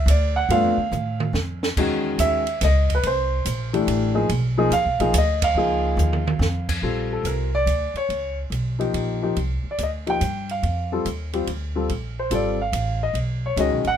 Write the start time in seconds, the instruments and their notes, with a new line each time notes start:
0.06 upright bass D2, hi-hat pedal, ride
0.10 grand piano D5
0.36 grand piano F#5
0.49 upright bass G2, grand piano A3 B3 D4 F4 F5, ride
0.64 upright bass F2
0.77 upright bass D2
0.92 upright bass A2, hi-hat pedal, mid tom
1.20 mid tom
1.33 upright bass F2, snare
1.63 snare
1.77 upright bass E2, grand piano D#3 G#3 C#4 F#4, kick, crash
2.19 upright bass D#2, grand piano E5, hi-hat pedal, ride
2.47 ride
2.61 upright bass C#2, grand piano D#5, snare, hi-hat pedal, ride
2.90 kick, ride
2.95 grand piano B4
3.03 upright bass C2, grand piano C5, ride
3.45 upright bass A#1, hi-hat pedal, ride
3.73 grand piano E3 A3 D4 G4, ride
3.87 upright bass A1, ride
4.15 grand piano F3 A#3 D#4 G#4
4.29 upright bass B1, ride
4.58 grand piano F3 A#3 D#4 G#4
4.70 upright bass D#2, grand piano F5, hi-hat pedal, ride
4.85 upright bass B1
5.00 upright bass A#1, grand piano F3 A#3 D#4 G#4, ride
5.13 upright bass D2, hi-hat pedal, ride
5.18 grand piano D#5
5.42 grand piano F5, kick, ride
5.55 upright bass C#2, grand piano F3 A#3 D#4 G#4
5.97 upright bass D#2, hi-hat pedal, mid tom
6.13 mid tom
6.27 mid tom
6.39 upright bass F2, snare
6.69 kick, crash
6.82 upright bass A#1, grand piano G3 C4 F4 A4
7.13 grand piano A4
7.23 upright bass C2, grand piano A#4, hi-hat pedal, ride
7.55 grand piano D5
7.66 upright bass D2, hi-hat pedal, ride
7.94 grand piano C#5, muted upright bass stroke, ride
8.09 upright bass C#2, ride
8.50 upright bass B1, hi-hat pedal, ride
8.79 grand piano F3 A#3 D#4 G4, ride
8.94 upright bass A#1, ride
9.22 grand piano F3 A#3 D#4 G4
9.36 upright bass C2, ride
9.64 muted upright bass stroke
9.71 grand piano D5
9.78 upright bass D2, hi-hat pedal, ride
9.83 grand piano D#5
10.06 grand piano F3 A#3 D#4 G4 G5, ride
10.21 upright bass G2, hi-hat pedal, ride
10.49 grand piano F5, ride
10.63 upright bass F2, ride
10.92 grand piano G3 C4 F4 A4
11.05 upright bass D#2, hi-hat pedal, ride
11.33 grand piano G3 C4 F4 G4, ride
11.47 upright bass D2, ride
11.76 grand piano G3 C4 F4 A4
11.89 upright bass A#1, ride
12.19 grand piano C5
12.31 upright bass G#1, grand piano G3 C4 F4 A4 D5, hi-hat pedal, ride
12.62 grand piano F5
12.72 upright bass A1, hi-hat pedal, ride
13.03 grand piano D#5
13.13 upright bass B1, ride
13.46 grand piano C#5
13.56 upright bass C#2, grand piano D#3 G#3 C#4 F#4 D#5, hi-hat pedal, ride
13.71 upright bass B1
13.85 upright bass A1, grand piano F#5, ride